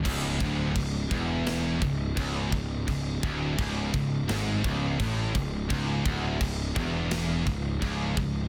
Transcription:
0.05 picked electric bass C#1, distorted electric guitar C#2, kick, crash
0.40 picked electric bass D1, distorted electric guitar D2, kick
0.76 picked electric bass C#1, distorted electric guitar C#2, kick, crash
1.11 picked electric bass E1, distorted electric guitar E2, kick, crash
1.47 snare, crash
1.82 picked electric bass C#1, distorted electric guitar C#2, kick, crash
2.17 picked electric bass C#1, distorted electric guitar C#2, kick, crash
2.52 picked electric bass C#1, distorted electric guitar C#2, kick, crash
2.88 picked electric bass C#1, distorted electric guitar C#2, kick, crash
3.23 picked electric bass D1, distorted electric guitar D2, kick, crash
3.58 picked electric bass C#1, distorted electric guitar C#2, kick, crash
3.94 picked electric bass C#1, distorted electric guitar C#2, kick, crash
4.28 picked electric bass G#1, distorted electric guitar G#2, snare, crash
4.64 picked electric bass C#1, distorted electric guitar C#2, kick, crash
4.99 picked electric bass A1, distorted electric guitar A2, kick, crash
5.35 picked electric bass C#1, distorted electric guitar C#2, kick, crash
5.70 picked electric bass C#1, distorted electric guitar C#2, kick, crash
6.05 picked electric bass D1, distorted electric guitar D2, kick, crash
6.41 picked electric bass C#1, distorted electric guitar C#2, kick, crash
6.75 picked electric bass E1, distorted electric guitar E2, kick, crash
7.11 snare, crash
7.46 picked electric bass C#1, distorted electric guitar C#2, kick, crash
7.82 picked electric bass C#1, distorted electric guitar C#2, kick, crash
8.17 picked electric bass C#1, distorted electric guitar C#2, kick, crash

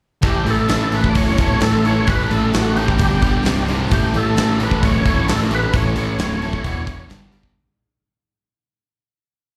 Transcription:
0.22 picked electric bass A1, distorted electric guitar A2 E3 A3, steel-string acoustic guitar A2 E3 A3 C#4 E4 A4, kick, open hi-hat
0.26 tonewheel organ G4
0.44 picked electric bass A1, distorted electric guitar A2 E3 A3, open hi-hat
0.50 tonewheel organ A4
0.68 picked electric bass A1, distorted electric guitar A2 E3 A3, steel-string acoustic guitar A2 E3 A3 C#4 E4 A4, snare, open hi-hat
0.80 steel-string acoustic guitar A3 C#4 E4 A4
0.91 distorted electric guitar A2 E3 A3, steel-string acoustic guitar A3 C#4 E4 A4, tonewheel organ B4, open hi-hat
1.04 kick
1.09 tonewheel organ D5
1.15 picked electric bass D1, distorted electric guitar A2 E3 A3, tonewheel organ C#5, kick, open hi-hat
1.26 steel-string acoustic guitar A3 C#4 E4 A4
1.37 distorted electric guitar A2 E3 A3, steel-string acoustic guitar A3 C#4 E4, kick, open hi-hat
1.41 steel-string acoustic guitar A4
1.60 picked electric bass A1, steel-string acoustic guitar A2 E3 A3 C#4 E4 A4, distorted electric guitar A2 E3 A3, tonewheel organ A4, snare, open hi-hat
1.72 steel-string acoustic guitar A3 C#4 E4 A4
1.83 distorted electric guitar A2 E3 A3, steel-string acoustic guitar A3 C#4 E4 A4, tonewheel organ C#5, open hi-hat
1.95 steel-string acoustic guitar A3 C#4 E4 A4
2.07 picked electric bass A1, distorted electric guitar A2 E3 A3, steel-string acoustic guitar A2 E3 A3 C#4 E4 A4, tonewheel organ B4, kick, open hi-hat
2.29 picked electric bass A1, distorted electric guitar A2 E3 A3, tonewheel organ A4, open hi-hat
2.52 picked electric bass A1, steel-string acoustic guitar A2 E3 A3 C#4 E4 A4, distorted electric guitar A2 E3 A3, tonewheel organ F#4, snare, open hi-hat
2.63 steel-string acoustic guitar A3 C#4 E4 A4
2.75 distorted electric guitar A2 E3 A3, steel-string acoustic guitar A3 C#4 E4 A4, tonewheel organ G4, open hi-hat
2.88 kick
2.98 picked electric bass G1, distorted electric guitar G2 D3 G3, steel-string acoustic guitar G3 D4 G4 D5, kick, open hi-hat
3.09 steel-string acoustic guitar G4 D5
3.13 steel-string acoustic guitar D4
3.20 distorted electric guitar G2 D3 G3, steel-string acoustic guitar G3 D4 G4 D5, kick, open hi-hat
3.42 distorted electric guitar C2 G2 C3, steel-string acoustic guitar C3 G3 C4 G4, open hi-hat
3.46 picked electric bass C1, snare
3.65 distorted electric guitar C2 G2, steel-string acoustic guitar C3 G3 C4 G4, open hi-hat
3.69 distorted electric guitar C3
3.76 steel-string acoustic guitar G3 C4 G4
3.87 steel-string acoustic guitar A2 A3 C#4 E4 A4, distorted electric guitar A2
3.91 picked electric bass A1, distorted electric guitar E3 A3, tonewheel organ G4, kick, open hi-hat
4.14 picked electric bass A1, distorted electric guitar A2 E3 A3, tonewheel organ A4, open hi-hat
4.34 picked electric bass A1, steel-string acoustic guitar A2 A3 C#4 E4 A4, distorted electric guitar A2 E3, open hi-hat
4.38 distorted electric guitar A3, snare
4.46 steel-string acoustic guitar C#4 E4 A4
4.57 distorted electric guitar A2 E3, steel-string acoustic guitar A3 C#4 E4 A4, open hi-hat
4.61 distorted electric guitar A3, tonewheel organ B4
4.71 kick
4.83 picked electric bass D1, distorted electric guitar A2 E3 A3, tonewheel organ C#5, kick, open hi-hat
4.92 steel-string acoustic guitar C#4 E4 A4
5.03 distorted electric guitar A2 E3, steel-string acoustic guitar A3 C#4 E4 A4, kick, open hi-hat
5.08 distorted electric guitar A3
5.16 steel-string acoustic guitar C#4 E4 A4
5.28 picked electric bass A1, steel-string acoustic guitar A2 A3 C#4 E4 A4, distorted electric guitar A2 E3 A3, tonewheel organ A4, snare, open hi-hat
5.39 steel-string acoustic guitar E4 A4
5.44 steel-string acoustic guitar C#4
5.50 distorted electric guitar A2 E3 A3, steel-string acoustic guitar A3 C#4 E4 A4, open hi-hat
5.55 tonewheel organ B4
5.61 steel-string acoustic guitar C#4 E4 A4
5.73 picked electric bass A1, steel-string acoustic guitar A2 A3 C#4 E4 A4, distorted electric guitar A2 E3 A3, tonewheel organ C#5, kick, open hi-hat
5.95 picked electric bass A1, distorted electric guitar A2 E3 A3, open hi-hat
6.18 picked electric bass D1, distorted electric guitar A2 E3 A3, steel-string acoustic guitar A2 A3 C#4 E4 A4, snare, open hi-hat
6.29 steel-string acoustic guitar C#4 E4 A4
6.41 distorted electric guitar A2 E3 A3, steel-string acoustic guitar A3 C#4 E4 A4, open hi-hat
6.53 kick
6.63 picked electric bass E1, distorted electric guitar E2 B2 E3, steel-string acoustic guitar E3 B3 E4 B4, kick, open hi-hat
6.77 steel-string acoustic guitar B3 E4 B4
6.86 distorted electric guitar E2 B2 E3, steel-string acoustic guitar E3 E4, kick, open hi-hat
6.90 steel-string acoustic guitar B4
7.08 picked electric bass G1, distorted electric guitar G2 D3 G3, steel-string acoustic guitar G3 D4 G4 D5, snare, open hi-hat
7.20 steel-string acoustic guitar D4 D5
7.30 distorted electric guitar G2 D3 G3, steel-string acoustic guitar G3 D4 G4 D5, open hi-hat
7.40 steel-string acoustic guitar D4 G4 D5, kick

